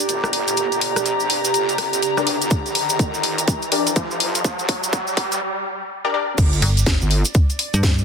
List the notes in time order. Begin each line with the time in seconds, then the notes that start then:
Already playing: G4 D5 A#5 D6, riser
0.09 G1, closed hi-hat, cabasa
0.24 cross-stick, cabasa
0.33 open hi-hat
0.48 closed hi-hat, cabasa
0.57 G1, closed hi-hat, cabasa
0.72 G1, closed hi-hat, cabasa
0.81 open hi-hat
0.96 A#1, cross-stick, closed hi-hat, cabasa
1.06 closed hi-hat, cabasa
1.20 cabasa
1.30 G2, open hi-hat
1.45 closed hi-hat, cabasa
1.54 G1, closed hi-hat, cabasa
1.69 closed hi-hat, cabasa
1.78 G1, cross-stick, open hi-hat
1.93 closed hi-hat, cabasa
2.02 G2, closed hi-hat, cabasa
2.17 D4 G4 A#4 D5, cross-stick, cabasa
2.27 D4 G4 A#4 D5, open hi-hat
2.42 G1, closed hi-hat, cabasa
2.50 G1, kick, closed hi-hat, cabasa
2.66 A#1, closed hi-hat, cabasa
2.75 open hi-hat
2.89 closed hi-hat, cabasa
2.99 G1, kick, closed hi-hat, cabasa
3.14 cabasa
3.23 open hi-hat
3.38 closed hi-hat, cabasa
3.48 kick, closed hi-hat, cabasa
3.62 closed hi-hat, cabasa
3.72 D4 G4 A#4 D5, open hi-hat
3.87 closed hi-hat, cabasa
3.96 G1, kick, closed hi-hat, cabasa
4.11 cabasa
4.20 open hi-hat
4.35 closed hi-hat, cabasa
4.44 G1, kick, closed hi-hat, cabasa
4.59 G1, closed hi-hat, cabasa
4.69 kick, open hi-hat
4.83 A#1, closed hi-hat, cabasa
4.93 kick, closed hi-hat, cabasa
5.07 cabasa
5.17 G2, kick, open hi-hat
5.32 closed hi-hat, cabasa
6.04 D4 G4 A#4 D5
6.14 D4 G4 A#4 D5
6.38 G1, kick, closed hi-hat, crash, cabasa
6.53 closed hi-hat, cabasa
6.62 G1, open hi-hat
6.77 closed hi-hat, cabasa
6.85 D5, kick, snare, closed hi-hat, cabasa
7.01 G1, cabasa
7.11 open hi-hat
7.25 closed hi-hat, cabasa
7.34 kick, closed hi-hat, cabasa
7.50 closed hi-hat, cabasa
7.59 open hi-hat
7.74 G2, closed hi-hat, cabasa
7.83 kick, snare, closed hi-hat, cabasa
7.98 cabasa